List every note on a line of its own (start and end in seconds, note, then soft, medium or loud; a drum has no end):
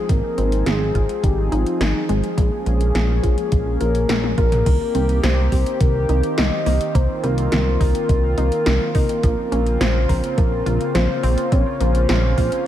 0.00 0.11 G#4 loud
0.09 0.22 G#1 loud
0.09 0.22 D#3 loud
0.09 4.62 F3 medium
0.09 2.35 C4 medium
0.09 2.35 D#4 medium
0.09 2.35 G#4 medium
0.09 0.68 A#4 loud
0.09 kick loud
0.09 closed hi-hat medium
0.38 0.63 G#1 loud
0.38 0.51 C4 medium
0.38 closed hi-hat medium
0.52 closed hi-hat medium
0.66 0.92 G#1 medium
0.66 0.88 D#3 medium
0.66 1.25 G#4 loud
0.66 snare loud
0.66 closed hi-hat medium
0.95 1.08 G#1 medium
0.95 1.22 F4 medium
0.95 kick medium
0.95 closed hi-hat medium
1.09 closed hi-hat medium
1.23 1.49 G#1 medium
1.23 1.37 D#3 medium
1.23 1.52 G4 loud
1.23 kick loud
1.23 closed hi-hat medium
1.52 1.65 G#1 medium
1.52 1.74 D#4 medium
1.52 1.82 F4 medium
1.52 closed hi-hat medium
1.66 closed hi-hat medium
1.80 1.93 G#1 loud
1.80 1.94 D#3 loud
1.80 2.09 D#4 medium
1.80 snare loud
1.80 closed hi-hat medium
2.09 2.22 G#1 medium
2.09 2.22 G#3 loud
2.09 3.77 G#4 medium
2.09 closed hi-hat medium
2.24 closed hi-hat medium
2.37 2.50 A#1 loud
2.37 4.64 A#3 medium
2.37 2.51 A#3 loud
2.37 4.64 C#4 medium
2.37 4.64 G#4 medium
2.37 kick loud
2.37 closed hi-hat medium
2.66 2.92 A#1 loud
2.66 2.79 G#3 medium
2.66 closed hi-hat medium
2.81 closed hi-hat medium
2.95 3.20 A#1 loud
2.95 3.17 F3 medium
2.95 snare loud
2.95 closed hi-hat medium
3.23 3.36 A#1 medium
3.23 3.37 F4 medium
3.23 kick medium
3.23 closed hi-hat medium
3.38 closed hi-hat medium
3.52 3.77 A#1 medium
3.52 3.65 F3 medium
3.52 kick loud
3.52 closed hi-hat medium
3.81 4.06 A#1 medium
3.81 4.03 F4 medium
3.81 4.34 A#4 loud
3.81 closed hi-hat medium
3.95 closed hi-hat medium
4.09 4.34 A#1 loud
4.09 4.22 F3 loud
4.09 snare loud
4.09 closed hi-hat loud
4.09 high tom medium
4.24 high tom medium
4.38 4.63 A#1 medium
4.38 4.60 F4 loud
4.38 5.19 A#4 loud
4.38 kick loud
4.38 closed hi-hat medium
4.52 closed hi-hat medium
4.52 mid tom medium
4.66 4.79 C2 loud
4.66 9.19 D#3 medium
4.66 4.79 D#3 loud
4.66 9.20 A#3 medium
4.66 9.19 C4 medium
4.66 6.93 G4 medium
4.66 kick loud
4.66 closed hi-hat loud
4.66 crash loud
4.95 5.20 C2 loud
4.95 5.08 C4 medium
4.95 closed hi-hat medium
5.09 closed hi-hat medium
5.23 5.49 C2 loud
5.23 5.45 D#3 medium
5.23 5.82 C5 loud
5.23 snare loud
5.23 closed hi-hat loud
5.52 5.65 C2 medium
5.52 5.79 G4 medium
5.52 kick medium
5.52 open hi-hat medium
5.66 closed hi-hat medium
5.80 6.06 C2 medium
5.80 5.94 D#3 medium
5.80 6.39 A#4 loud
5.80 kick loud
5.80 closed hi-hat loud
6.09 6.22 C2 medium
6.09 6.31 D#4 medium
6.09 closed hi-hat medium
6.23 closed hi-hat medium
6.38 6.50 C2 loud
6.38 6.51 D#3 loud
6.38 6.96 D#5 loud
6.38 snare loud
6.38 closed hi-hat medium
6.66 6.79 C2 medium
6.66 6.79 A#3 loud
6.66 open hi-hat medium
6.81 closed hi-hat medium
6.95 7.08 C2 loud
6.95 7.08 A#3 loud
6.95 9.21 F4 medium
6.95 7.25 C5 loud
6.95 kick loud
6.95 closed hi-hat loud
7.23 7.49 C2 loud
7.23 7.37 G3 medium
7.23 8.37 A#4 loud
7.23 closed hi-hat medium
7.38 closed hi-hat medium
7.52 7.77 C2 loud
7.52 7.74 D#3 medium
7.52 snare loud
7.52 closed hi-hat loud
7.80 7.93 C2 medium
7.80 7.94 D#4 medium
7.80 kick medium
7.80 open hi-hat medium
7.95 closed hi-hat medium
8.09 8.34 C2 medium
8.09 8.22 D#3 medium
8.09 kick loud
8.09 closed hi-hat loud
8.37 8.50 C2 medium
8.37 8.60 D#4 medium
8.37 8.91 A#4 loud
8.37 closed hi-hat medium
8.52 closed hi-hat medium
8.66 8.79 C2 loud
8.66 8.79 D#3 loud
8.66 snare loud
8.66 closed hi-hat loud
8.95 9.08 C2 medium
8.95 9.17 D#4 loud
8.95 9.82 A#4 loud
8.95 kick loud
8.95 open hi-hat medium
9.09 closed hi-hat medium
9.23 9.36 A#1 loud
9.23 12.67 C#3 medium
9.23 9.37 F3 loud
9.23 12.67 A#3 medium
9.23 11.50 C4 medium
9.23 12.67 F4 medium
9.23 kick loud
9.23 closed hi-hat medium
9.52 9.77 A#1 loud
9.52 9.65 C#4 medium
9.52 closed hi-hat medium
9.66 closed hi-hat medium
9.80 10.06 A#1 loud
9.80 10.03 F3 medium
9.80 10.39 C5 loud
9.80 snare loud
9.80 closed hi-hat loud
10.09 10.22 A#1 medium
10.09 10.36 A#4 medium
10.09 kick medium
10.09 open hi-hat medium
10.24 closed hi-hat medium
10.37 10.63 A#1 medium
10.37 10.51 F3 medium
10.37 10.94 A#4 loud
10.37 kick loud
10.37 closed hi-hat medium
10.66 10.79 A#1 medium
10.66 10.88 F4 medium
10.66 closed hi-hat medium
10.81 closed hi-hat medium
10.94 11.08 A#1 loud
10.94 11.08 F3 loud
10.94 11.53 C5 loud
10.94 snare loud
10.94 closed hi-hat loud
11.23 11.36 A#1 medium
11.23 11.37 C4 loud
11.23 open hi-hat medium
11.38 closed hi-hat medium
11.52 11.65 A#1 loud
11.52 11.65 C4 loud
11.52 12.67 C#4 medium
11.52 11.81 C#5 loud
11.52 kick loud
11.52 closed hi-hat loud
11.80 12.06 A#1 loud
11.80 11.94 A#3 medium
11.80 12.67 C5 loud
11.80 closed hi-hat medium
11.95 closed hi-hat medium
12.09 12.35 A#1 loud
12.09 12.31 F3 medium
12.09 snare loud
12.09 closed hi-hat medium
12.38 12.50 A#1 medium
12.38 12.51 F4 medium
12.38 kick medium
12.38 open hi-hat medium
12.52 closed hi-hat medium